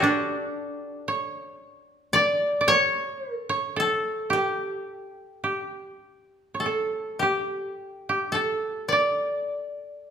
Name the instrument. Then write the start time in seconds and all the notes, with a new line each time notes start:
koto
Already playing: F#4 G4 A4 D5
0.00 D4 F#4
1.08 C#5
2.13 D5
2.61 D5
2.68 C#5
3.39 A4
3.49 C#5
3.76 A4
4.30 G4
5.44 G4
6.54 C#5
6.60 A4
6.66 A4
7.19 G4
8.09 G4
8.32 A4
8.88 D5